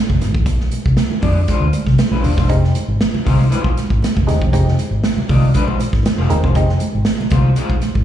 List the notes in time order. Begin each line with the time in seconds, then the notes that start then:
0.10 F1, kick, muted conga
0.21 G#1, snare, closed hi-hat, high conga, low conga
0.34 A1, kick
0.46 A#1, kick, closed hi-hat
0.60 snare, muted conga
0.71 closed hi-hat, high conga
0.86 C2, kick
0.97 snare, closed hi-hat, muted conga
1.10 muted fingered electric bass stroke, high conga
1.21 F2 G#3 D4 F4 D5, kick, open hi-hat, low conga
1.48 G#3 D4 F4 C5, kick, closed hi-hat, high conga
1.60 D2
1.73 closed hi-hat, high conga
1.86 C2, kick, snare
1.98 snare, closed hi-hat, high conga
2.11 A#1 G#3 D4 F4 C5, muted conga
2.24 D#1, open hi-hat, high conga, low conga
2.37 E1 G#3 D4 F4 C5, kick, snare
2.49 F1 G#3 C4 D#4 G4, kick, closed hi-hat
2.64 snare, muted conga
2.75 closed hi-hat, high conga
2.88 G#1
3.01 snare, closed hi-hat
3.14 muted fingered electric bass stroke, muted conga, high conga
3.25 C2 G#3 D#4 F4 C5, kick, open hi-hat, low conga
3.50 G#3 D#4 F4 C5, closed hi-hat, high conga
3.64 A#1, kick
3.77 snare, closed hi-hat, high conga
3.90 G#1, kick
4.02 snare, closed hi-hat, high conga
4.17 F1, kick, muted conga
4.27 D#1 G#3 C4 D#4 G4, snare, closed hi-hat, high conga, low conga
4.41 E1, kick
4.53 F1 G#3 C4 D#4 G4, kick, closed hi-hat, muted conga
4.68 snare
4.79 closed hi-hat, high conga
4.91 G#1
5.04 snare, closed hi-hat
5.17 muted fingered electric bass stroke, high conga
5.29 C2 G#3 D#4 F4 D5, kick, open hi-hat, low conga
5.54 G#3 D#4 F4 C5, kick, closed hi-hat, high conga
5.67 A#1, muted conga
5.80 closed hi-hat, high conga
5.93 G#1, kick, snare
6.03 snare, closed hi-hat, high conga
6.18 F1 G#3 D#4 F4 C5
6.30 D#1 G#3 C4 D#4 A#4, closed hi-hat, high conga, low conga
6.43 E1 G#3 D#4 F4 C5, kick
6.55 F1 G#3 C4 D#4 G4, kick, closed hi-hat
6.69 snare, muted conga
6.80 closed hi-hat, high conga
6.95 G#1
7.05 snare, closed hi-hat
7.20 muted fingered electric bass stroke, muted conga, high conga
7.30 C2 G#3 D#4 F4 C5, kick, closed hi-hat, low conga
7.56 G#3 D#4 F4 C5, closed hi-hat, high conga
7.69 A#1, kick, muted conga
7.81 snare, closed hi-hat, high conga
7.95 G#1, kick